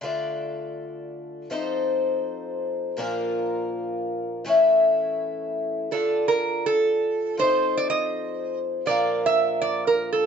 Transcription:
<<
  \new Staff \with { instrumentName = "Resonator guitar played with a steel bar" } { \time 3/4 \key f \major \tempo 4 = 122 r2. | r2. | r2. | r2. |
a'8. bes'8. a'4. | c''8. d''16 ees''4. r8 | d''8. e''8. d''8 bes'8 a'8 | }
  \new Staff \with { instrumentName = "Twelve-string acoustic guitar" } { \time 3/4 \key f \major <d a f' a' d''>2. | <f c' ees' a' c''>2. | <bes, f bes d' f' bes'>2. | <a, e a cis' e' a'>2. |
<d d' f'>2. | <f c' ees' a' c''>2. | <bes, f bes d' f' bes'>2. | }
>>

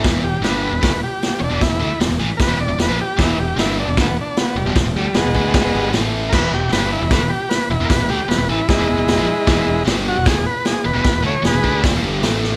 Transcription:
<<
  \new Staff \with { instrumentName = "Transistor combo organ" } { \time 4/4 \key a \major \tempo 4 = 152 r8 g'8 b'4. g'4 <cis' d'>8 | e'4 r4 <ais' b'>8 d''8 b'8 g'8 | e'8 g'8 e'8 d'8 b8 d'8 b8 g8 | r8 g8 <gis b>2 r4 |
<ais' b'>8 g'8 b'8 e'8 b'8 g'8 b'8 e'8 | <ais' b'>8 g'8 b'8 e'8 <gis e'>2~ | <gis e'>4 r8 fis'8 gis'8 b'8 gis'8 b'8~ | b'8 cis''8 <gis' b'>4 r2 | }
  \new Staff \with { instrumentName = "Overdriven electric guitar" } { \clef bass \time 4/4 \key a \major <e, b, e>8 <e, b,>8 <g, d g>8. <e, b,>16 <d a>16 <e, b,>16 r4 <e, b,>16 <e, b,>16 | <e, b,>16 <e, b,>16 <d a>16 r16 <e, b,>16 <e, b,>16 <a, e>16 r8 <e, b,>16 <e, b,>16 <e, b,>16 <e, b,>16 <ais, f>16 r8 | <e, b, e>8 <e, b,>8 <g, d g>8. <e, b,>16 <d a>16 <e, b,>16 r4 <e, b,>16 <e, b,>16 | <e, b,>16 <e, b,>16 <d a>16 r16 <e, b,>16 <e, b,>16 <d a d'>8. <e, b,>16 <g, d g>8 <a, e a>4 |
<e, b, e>8 <e, b,>8 <g, d g>8. <e, b,>16 <d a>16 <e, b,>16 r4 <e, b,>16 <e, b,>16 | <e, b,>16 <e, b,>16 <d a>16 r16 <e, b,>16 <e, b,>16 <a, e>16 r8 <e, b,>16 <e, b,>16 <e, b,>16 <e, b,>16 <ais, f>16 r8 | <e, b, e>8 <e, b,>8 <g, d g>8. <e, b,>16 <d a>16 <e, b,>16 r4 <e, b,>16 <e, b,>16 | <e, b,>16 <e, b,>16 <d a>16 r16 <e, b,>16 <e, b,>16 <d a d'>8. <e, b,>16 <g, d g>8 <a, e a>4 | }
  \new Staff \with { instrumentName = "Fingered electric bass" } { \clef bass \time 4/4 \key a \major e,,8 e,,8 g,,8. e,,16 d,16 e,,16 r4 e,,16 e,,16 | e,,16 e,,16 d,16 r16 e,,16 e,,16 a,,16 r8 e,,16 e,,16 e,,16 e,,16 ais,,16 r8 | e,,8 e,,8 g,,8. e,,16 d,16 e,,16 r4 e,,16 e,,16 | e,,16 e,,16 d,16 r16 e,,16 e,,16 d,8. e,,16 g,,8 a,,4 |
e,,8 e,,8 g,,8. e,,16 d,16 e,,16 r4 e,,16 e,,16 | e,,16 e,,16 d,16 r16 e,,16 e,,16 a,,16 r8 e,,16 e,,16 e,,16 e,,16 ais,,16 r8 | e,,8 e,,8 g,,8. e,,16 d,16 e,,16 r4 e,,16 e,,16 | e,,16 e,,16 d,16 r16 e,,16 e,,16 d,8. e,,16 g,,8 a,,4 | }
  \new DrumStaff \with { instrumentName = "Drums" } \drummode { \time 4/4 <hho bd sn>4 <hho sn>4 <hho bd sn>4 <hho sn>4 | <hho bd sn>4 <hho sn>4 <hho bd sn>4 <hho sn>4 | <hho bd sn>4 <hho sn>4 <hho bd sn>4 <hho sn>4 | <hho bd sn>4 <hho sn>8 bd8 <hho bd sn>4 <hho sn>4 |
<cymc bd sn>4 <hho sn>4 <hho bd sn>4 <hho sn>4 | <hho bd sn>4 <hho sn>4 <hho bd sn>4 <hho sn>4 | <hho bd sn>4 <hho sn>4 <hho bd sn>4 <hho sn>4 | <hho bd sn>4 <hho sn>8 bd8 <hho bd sn>4 <hho sn>8 sn8 | }
>>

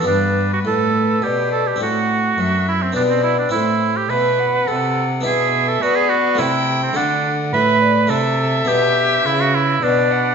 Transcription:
<<
  \new Staff \with { instrumentName = "Violin" } { \time 3/4 \key g \major \tempo 4 = 105 b'2 d''4 | fis''4 e''4 d''4 | c''4 e''8 fis''4. | e''4 d''4 g''4 |
\key d \major fis''4 e''8 d''8 e''4~ | e''2 d''8 fis''8 | }
  \new Staff \with { instrumentName = "Oboe" } { \time 3/4 \key g \major d'8. fis'16 a'4 g'8 a'16 g'16 | fis'4. e'16 c'16 d'16 c'16 e'16 d'16 | e'8. g'16 b'4 a'4 | aes'8. a'16 fis'16 aes'16 fis'8 e'8. c'16 |
\key d \major d'8. r16 b'4 a'4 | g'4 e'16 fis'16 e'8 d'4 | }
  \new Staff \with { instrumentName = "Harpsichord" } { \time 3/4 \key g \major <b d' g'>2. | <c' d'>2 <b d' g'>4 | <c' e'>2. | <b d' e'>2 <a c' e'>4 |
\key d \major <a fis'>2 <a d'>4 | <b d'>2. | }
  \new Staff \with { instrumentName = "Harpsichord" } { \clef bass \time 3/4 \key g \major g,4 a,4 b,4 | a,4 fis,4 b,4 | a,4 b,4 c4 | b,4 b4 c4 |
\key d \major d4 a,4 c4 | b,4 cis4 b,4 | }
  \new Staff \with { instrumentName = "Cello" } { \clef bass \time 3/4 \key g \major g,4 a,4 b,4 | a,4 fis,4 b,4 | a,4 b,4 c4 | b,4 b4 c4 |
\key d \major d4 a,4 c4 | b,4 cis4 b,4 | }
>>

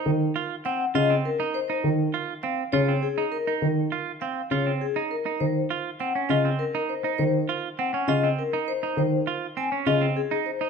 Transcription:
<<
  \new Staff \with { instrumentName = "Vibraphone" } { \time 3/4 \key ees \dorian \tempo 4 = 101 r4 ges''16 r16 ees''16 r16 bes'16 r16 c''16 r16 | r4 f''16 r16 des''16 r16 aes'16 r16 bes'16 r16 | r4 f''16 r16 des''16 r16 aes'16 r16 bes'16 r16 | c''16 r8. ges''16 r16 ees''16 r16 bes'16 r16 c''16 r16 |
c''16 r8. ges''16 r16 ees''16 r16 bes'16 r16 c''16 r16 | c''16 r8. aes''16 r16 ees''16 r16 aes'16 r16 c''16 r16 | }
  \new Staff \with { instrumentName = "Clean electric guitar" } { \time 3/4 \key ees \dorian r8 f'16 r16 c'16 r16 f'16 c'16 r16 ees'16 r16 ees'16 | r8 f'16 r16 c'16 r16 f'16 c'16 r16 ees'16 r16 ees'16 | r8 f'16 r16 c'16 r16 f'16 c'16 r16 ees'16 r16 ees'16 | r8 f'16 r16 c'16 des'16 f'16 c'16 r16 ees'16 r16 ees'16 |
r8 f'16 r16 c'16 des'16 f'16 c'16 r16 ees'16 r16 ees'16 | r8 f'16 r16 c'16 des'16 f'16 c'16 r16 ees'16 r16 ees'16 | }
  \new Staff \with { instrumentName = "Grand piano" } { \clef bass \time 3/4 \key ees \dorian ees16 r4 r16 des16 r4 r16 | ees16 r4 r16 des16 r4 r16 | ees16 r4 r16 des16 r4 r16 | ees16 r4 r16 des16 r4 r16 |
ees16 r4 r16 des16 r4 r16 | ees16 r4 r16 des16 r4 r16 | }
>>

